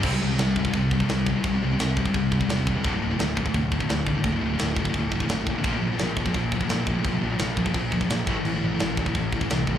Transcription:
<<
  \new Staff \with { instrumentName = "Distorted electric guitar" } { \clef bass \time 4/4 \key c \mixolydian \tempo 4 = 172 <c g c'>16 <c g>16 <c g>16 <c g>16 <c g>8 <c g>16 <c g>16 <c g>8 <c g>16 <c g>16 <c g>8 <c g>16 <c g>16 | <c g>16 <c g>16 <c g>16 <c g>16 <c g>8 <c g>16 <c g>16 <c g>8 <c g>16 <c g>16 <c g>8 <c g>16 <c g>16 | <d, a, d>16 <d, a,>16 <d, a,>16 <d, a,>16 <d, a,>8 <d, a,>16 <d, a,>16 <d, a,>8 <d, a,>16 <d, a,>16 <d, a,>8 <d, a,>16 <d, a,>16 | <d, a,>16 <d, a,>16 <d, a,>16 <d, a,>16 <d, a,>8 <d, a,>16 <d, a,>16 <d, a,>8 <d, a,>16 <d, a,>16 <d, a,>8 <d, a,>16 <d, a,>16 |
<bes, f bes>16 <bes, f>16 <bes, f>16 <bes, f>16 <bes, f>8 <bes, f>16 <bes, f>16 <bes, f>8 <bes, f>16 <bes, f>16 <bes, f>8 <bes, f>16 <bes, f>16 | <bes, f>16 <bes, f>16 <bes, f>16 <bes, f>16 <bes, f>8 <bes, f>16 <bes, f>16 <bes, f>8 <bes, f>16 <bes, f>16 <bes, f>8 <a, e a>16 <a, e>16 | <a, e>16 <a, e>16 <a, e>16 <a, e>16 <a, e>8 <a, e>16 <a, e>16 <a, e>8 <a, e>16 <a, e>16 <a, e>8 <a, e>16 r16 | }
  \new Staff \with { instrumentName = "Distorted electric guitar" } { \clef bass \time 4/4 \key c \mixolydian <c g c'>16 <c g>16 <c g>16 <c g>16 <c g>8 <c g>16 <c g>16 <c g>8 <c g>16 <c g>16 <c g>8 <c g>16 <c g>16 | <c g>16 <c g>16 <c g>16 <c g>16 <c g>8 <c g>16 <c g>16 <c g>8 <c g>16 <c g>16 <c g>8 <c g>16 <c g>16 | <d, a, d>16 <d, a,>16 <d, a,>16 <d, a,>16 <d, a,>8 <d, a,>16 <d, a,>16 <d, a,>8 <d, a,>16 <d, a,>16 <d, a,>8 <d, a,>16 <d, a,>16 | <d, a,>16 <d, a,>16 <d, a,>16 <d, a,>16 <d, a,>8 <d, a,>16 <d, a,>16 <d, a,>8 <d, a,>16 <d, a,>16 <d, a,>8 <d, a,>16 <d, a,>16 |
<bes, f bes>16 <bes, f>16 <bes, f>16 <bes, f>16 <bes, f>8 <bes, f>16 <bes, f>16 <bes, f>8 <bes, f>16 <bes, f>16 <bes, f>8 <bes, f>16 <bes, f>16 | <bes, f>16 <bes, f>16 <bes, f>16 <bes, f>16 <bes, f>8 <bes, f>16 <bes, f>16 <bes, f>8 <bes, f>16 <bes, f>16 <bes, f>8 <a, e a>16 <a, e>16 | <a, e>16 <a, e>16 <a, e>16 <a, e>16 <a, e>8 <a, e>16 <a, e>16 <a, e>8 <a, e>16 <a, e>16 <a, e>8 <a, e>16 r16 | }
  \new Staff \with { instrumentName = "Fingered electric bass" } { \clef bass \time 4/4 \key c \mixolydian c,8 c,8 c,4 c,4 c,4 | c,8 c,8 c,4 c,4 e,,4 | d,,8 d,,8 d,,4 d,,4 d,4 | d,,8 d,,8 d,,4 d,,4 a,,4 |
bes,,8 bes,,8 bes,,4 bes,,4 bes,4 | bes,,8 bes,,8 bes,,4 bes,,4 bes,8 a,,8 | a,,8 a,,8 a,,4 a,,4 c,4 | }
  \new DrumStaff \with { instrumentName = "Drums" } \drummode { \time 4/4 <cymc bd>4 <cymc sn>8 bd16 bd16 <cymc bd>8 bd16 bd16 <cymc sn>8 bd8 | <cymc bd>4 <cymc sn>8 bd16 bd16 <cymc bd>8 bd16 bd16 <cymc sn>8 bd8 | <cymc bd>4 <cymc sn>8 bd16 bd16 <cymc bd>8 bd16 bd16 <cymc sn>8 bd8 | <cymc bd>4 <cymc sn>8 bd16 bd16 <cymc bd>8 bd16 bd16 <cymc sn>8 bd8 |
<cymc bd>4 <cymc sn>8 bd16 bd16 <cymc bd>8 bd16 bd16 <cymc sn>8 bd8 | <cymc bd>4 <cymc sn>8 bd16 bd16 <cymc bd>8 bd16 bd16 <cymc sn>8 bd8 | cymc4 <cymc sn>8 bd16 bd16 <cymc bd>8 bd16 bd16 <cymc sn>8 bd8 | }
>>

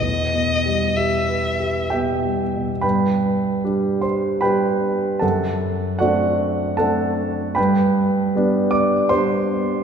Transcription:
<<
  \new Staff \with { instrumentName = "Violin" } { \time 3/4 \key e \minor \tempo 4 = 76 dis''4 e''4 r4 | \key g \major r2. | r2. | r2. | }
  \new Staff \with { instrumentName = "Grand piano" } { \time 3/4 \key e \minor r2 <g' e'' g''>4 | \key g \major <b' g'' b''>4. <c'' c'''>8 <b' g'' b''>4 | <a' fis'' a''>4 <fis' d'' fis''>4 <a' fis'' a''>4 | <b' g'' b''>4. <d'' d'''>8 <c'' c'''>4 | }
  \new Staff \with { instrumentName = "Grand piano" } { \time 3/4 \key e \minor \tuplet 3/2 { e,8 b,8 g8 g'8 b'8 g'8 b,8 g8 b,8 } | \key g \major g,4 <g d' g'>4 <g d' g'>4 | fis,4 <a c' d'>4 <a c' d'>4 | g,4 <g b d'>4 <g b d'>4 | }
>>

